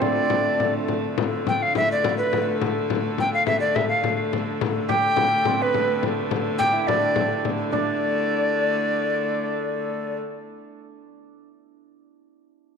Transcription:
Already playing: hurdy-gurdy D3 A3, hammered dulcimer C4 F4
0.01 hammered dulcimer D4, recorder D5, frame drum
0.16 frame drum
0.30 frame drum
0.60 frame drum
0.88 hurdy-gurdy D3 A3, frame drum
1.18 frame drum
1.47 recorder G5, frame drum
1.62 recorder F5
1.75 recorder E5, frame drum
1.92 recorder D5
2.04 frame drum
2.18 recorder B4
2.33 frame drum
2.61 frame drum
2.90 frame drum
3.18 recorder G5, frame drum
3.34 recorder F5
3.47 recorder E5, frame drum
3.60 recorder D5
3.75 recorder E5, frame drum
3.89 recorder F5
4.04 frame drum
4.32 hurdy-gurdy D3 A3, frame drum
4.61 frame drum
4.89 hammered dulcimer G4, recorder G5, frame drum
5.17 frame drum
5.45 hammered dulcimer C4, frame drum
5.60 hammered dulcimer B3, recorder B4
5.74 frame drum
6.03 frame drum
6.31 frame drum
6.59 hammered dulcimer G4, recorder G5, frame drum
6.72 hammered dulcimer E4
6.87 hammered dulcimer D4, recorder D5, frame drum
7.01 frame drum
7.16 frame drum
7.30 frame drum
7.45 frame drum
7.70 hurdy-gurdy D3 A3, hammered dulcimer D4, recorder D5, frame drum

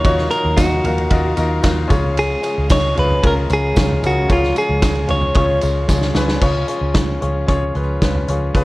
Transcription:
Already playing: string section A#2 D#3 F#3 F5, grand piano D#3 D#4 F4 F#4 A#4 C#5, clean electric guitar C#5
0.05 picked electric bass D#2, grand piano D#4 F4 F#4 C#5, kick, ride, tambourine
0.18 snare
0.30 grand piano D#4 F4 F#4 A#4, clean electric guitar A#4, ride, tambourine
0.45 picked electric bass D#2
0.57 picked electric bass D#2, grand piano D#4 F4 F#4 A#4, clean electric guitar F#4, kick, snare, ride, tambourine
0.84 picked electric bass D#2, grand piano D#4 F4 F#4 A#4, floor tom, ride, tambourine
0.98 floor tom, ride
1.10 picked electric bass D#2, grand piano D#4 F4 F#4 A#4, kick, ride, tambourine
1.36 picked electric bass D#2, grand piano D#4 F4 F#4 A#4, ride, tambourine
1.62 picked electric bass D#2, grand piano D#4 F4 F#4 A#4, kick, snare, ride, tambourine
1.88 picked electric bass C#2, grand piano C#3 C#4 F4 G#4 C#5, string section C#3 G#3, kick, floor tom, ride, tambourine
1.92 string section F3
2.18 clean electric guitar G#4, ride, tambourine
2.42 grand piano C#4 F4 G#4 C#5, ride, tambourine
2.58 picked electric bass C#2
2.69 picked electric bass C#2, grand piano C#4 F4 G#4 D#5, clean electric guitar C#5, kick, snare, ride, tambourine
2.95 picked electric bass C#2, grand piano C#4 F4 G#4 C#5, floor tom, ride
2.99 clean electric guitar B4
3.11 floor tom
3.23 picked electric bass C#2, grand piano C#4 F4 G#4 A#4, kick, ride, tambourine
3.27 clean electric guitar A#4
3.49 picked electric bass C#2, grand piano C#4 F4 G#4 C#5, ride, tambourine
3.54 clean electric guitar G#4
3.75 picked electric bass C#2, grand piano C#4 F4 G#4 C#5, kick, snare, ride, tambourine
3.91 floor tom
4.03 picked electric bass C#2, grand piano C#3 C#4 F4 G#4 A#4, floor tom, ride, tambourine
4.07 clean electric guitar F#4
4.28 picked electric bass C#2, grand piano C#4 F4 G#4 C#5, clean electric guitar F4, kick, ride, tambourine
4.43 snare
4.56 grand piano C#4 F4 G#4 C#5, clean electric guitar G#4, ride, tambourine
4.69 picked electric bass C#2
4.81 picked electric bass C#2, grand piano C#4 F4 G#4 C#5, kick, snare, ride, tambourine
4.96 ride
5.08 picked electric bass C#2, grand piano C#4 F4 G#4 C#5, clean electric guitar C#5, floor tom, ride, tambourine
5.21 floor tom
5.34 picked electric bass C#2, grand piano C#4 F4 G#4 C#5, kick, ride, tambourine
5.61 picked electric bass C#2, grand piano C#4 F4 G#4 C#5, ride, tambourine
5.88 picked electric bass C#2, grand piano C#4 F4 G#4 C#5, kick, snare, tambourine
6.01 snare
6.14 picked electric bass C#2, grand piano C#4 F4 G#4 B4, snare, tambourine
6.28 snare
6.41 picked electric bass C#2, grand piano C#3 C#4 F4 G#4 C#5, string section C#3 F3 G#3 F4, kick, crash
6.68 grand piano C#4 F4 G#4 C#5, closed hi-hat
6.81 picked electric bass C#2
6.94 picked electric bass C#2, grand piano C#4 F4 G#4 C#5, kick, snare, closed hi-hat
7.21 picked electric bass C#2, grand piano C#4 F4 G#4 C#5, closed hi-hat
7.47 picked electric bass C#2, grand piano C#4 F4 G#4 C#5, kick, closed hi-hat
7.74 picked electric bass C#2, grand piano C#4 F4 G#4 B4, closed hi-hat
8.02 picked electric bass C#2, grand piano C#4 F4 G#4 B4, kick, snare, closed hi-hat
8.15 floor tom
8.27 picked electric bass C#2, grand piano C#4 F4 G#4 C#5, closed hi-hat
8.54 picked electric bass C#2, grand piano C#3 C#4 F4 G#4 B4, string section D#4, kick, closed hi-hat

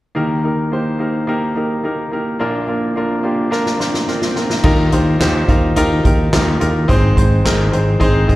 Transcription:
0.15 grand piano D#2 D#3 A#3 D#4 G4 A#4
0.43 grand piano A#3 D#4 G4 A#4
0.72 grand piano A#3 D#4 G4 C5
0.99 grand piano A#3 D#4 G4 A#4
1.27 grand piano A#3 D#4 G4 A#4
1.56 grand piano A#3 D#4 G4 A#4
1.83 grand piano A#3 D#4 G4 A#4
2.12 grand piano A#3 D#4 G4 A#4
2.39 grand piano A#1 A#2 A#3 D4 F4 A#4, swell
2.68 grand piano A#3 D4 F4 A#4
2.96 grand piano A#3 D4 F4 A#4
3.23 grand piano A#3 D4 F4 G4 C6
3.51 grand piano A#3 D4 F4 A#4 A#5, snare
3.66 snare
3.78 grand piano A#3 D4 F4 A#4, snare
3.94 snare
4.07 grand piano A#3 D4 F4 A#4 F5, snare
4.22 snare
4.35 grand piano A#3 D4 F4 A#4, snare
4.50 snare
4.63 fingered electric bass D#2, grand piano D#3 D#4 F4 G4 A#4, kick, crash
4.91 fingered electric bass D#2, grand piano D#4 F4 G4 C5, closed hi-hat
5.19 fingered electric bass D#2, grand piano D#4 F4 G4 C5, snare, clap, closed hi-hat
5.48 fingered electric bass D#2, grand piano D#4 F4 G4 A#4, kick, closed hi-hat
5.76 fingered electric bass D#2, grand piano D#4 F4 G4 A#4, closed hi-hat
6.04 fingered electric bass D#2, grand piano D#4 F4 G4 A#4, kick, closed hi-hat
6.33 fingered electric bass D#2, grand piano D#4 F4 G4 A#4, snare, clap, closed hi-hat
6.60 fingered electric bass D#2, grand piano D#4 F4 G4 A#4, closed hi-hat
6.88 fingered electric bass G#1, grand piano G#2 C4 D#4 G#4 C5, kick, closed hi-hat
7.17 fingered electric bass G#1, grand piano C4 D#4 G#4 C5, kick, closed hi-hat
7.45 fingered electric bass G#1, grand piano C4 D#4 G#4 A#4, snare, clap, closed hi-hat
7.72 fingered electric bass G#1, grand piano C4 D#4 G#4 C5, closed hi-hat
8.00 fingered electric bass G#1, grand piano C4 D#4 G#4 C5, kick, closed hi-hat
8.27 fingered electric bass G#1, grand piano C4 D#4 G#4 D#5, kick, closed hi-hat

